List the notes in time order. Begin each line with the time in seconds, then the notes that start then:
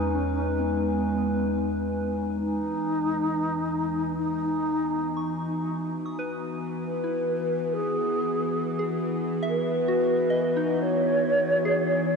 Already playing: E2 E3 G#3 D#4 B4 G#5
0.14 C#4
0.58 B3
2.38 E3 D#4
3.16 B3
4.17 D#4
4.91 F#4
5.17 C#6
6.06 D#6
6.19 B4
6.84 B4
7.04 E4
7.73 G#4
8.79 G#4
9.43 E5
9.48 B4
9.88 F#4
10.30 D#5
10.56 D#4
10.81 C#5
11.65 G#4